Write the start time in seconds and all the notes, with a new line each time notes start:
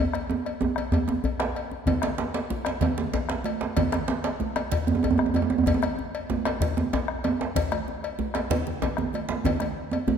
0.13 bombo rim, cowbell, djembe slap
0.30 djembe tone
0.46 bombo rim, cowbell, djembe slap
0.61 djembe slap, djembe tone, djembe bass
0.76 bombo rim, cowbell, djembe slap, djembe tone
0.92 bombo low, cowbell, djembe tone
1.08 djembe slap, djembe tone
1.24 cowbell, djembe tone, djembe bass
1.40 bombo rim, djembe slap
1.55 bombo rim, cowbell
1.71 djembe slap, djembe tone
1.86 bombo low, cowbell, high conga, djembe tone, low conga, djembe bass
2.02 bombo rim, cowbell, djembe slap, high conga
2.18 djembe slap, djembe tone
2.34 cowbell, djembe slap
2.50 djembe slap, high conga, djembe bass
2.65 bombo rim, cowbell, djembe slap, high conga, djembe tone
2.81 bombo rim, bombo low, cowbell, djembe tone, low conga
2.98 djembe slap, high conga
3.13 cowbell, djembe slap, high conga, djembe tone, djembe bass
3.29 bombo rim, djembe slap
3.44 cowbell, high conga
3.61 bombo rim, djembe slap, djembe tone
3.77 bombo low, cowbell, djembe tone, high conga, low conga, djembe bass
3.92 bombo rim, cowbell, djembe slap
3.94 djembe slap
4.08 djembe slap, djembe tone
4.24 cowbell, djembe slap
4.40 djembe slap, high conga, djembe bass
4.56 bombo rim, cowbell, djembe slap, high conga, djembe tone
4.72 bombo rim, bombo low, cowbell, djembe slap, low conga
4.87 djembe slap, high conga, djembe bass
4.95 djembe tone
5.03 cowbell, djembe tone, high conga, djembe bass
5.11 djembe bass
5.18 bombo rim, djembe tone
5.26 djembe tone
5.34 cowbell, high conga, djembe bass
5.42 djembe tone
5.50 bombo rim, djembe slap, djembe tone
5.58 djembe bass
5.66 bombo low, cowbell, djembe tone, high conga, djembe bass, low conga
5.74 djembe tone
5.82 bombo rim, cowbell, djembe slap, high conga
5.99 djembe tone
6.15 cowbell
6.30 djembe slap, djembe tone, high conga, djembe bass
6.45 bombo rim, cowbell, djembe slap, djembe tone, high conga
6.61 bombo rim, bombo low, cowbell, djembe slap, low conga
6.77 djembe slap, high conga, djembe tone
6.93 cowbell, djembe slap, high conga, djembe tone, djembe bass
7.08 bombo rim
7.24 cowbell, djembe tone
7.40 bombo rim, djembe slap, djembe tone
7.55 bombo low, cowbell, djembe bass, low conga
7.72 bombo rim, cowbell, djembe slap, high conga
7.88 high conga, djembe tone
8.03 bombo rim, cowbell, high conga
8.19 djembe slap, high conga, djembe bass
8.34 bombo rim, cowbell, djembe slap, djembe tone
8.50 bombo low, cowbell, djembe tone, low conga
8.67 djembe slap, low conga
8.82 cowbell, djembe slap, djembe tone, djembe bass, low conga
8.97 bombo rim, djembe tone, low conga
9.13 cowbell, djembe slap, high conga
9.29 djembe slap, high conga, djembe tone
9.44 bombo low, cowbell, djembe tone, high conga, djembe bass, low conga
9.60 bombo rim, cowbell, djembe slap, high conga
9.91 cowbell, djembe tone
10.08 high conga, djembe tone, djembe bass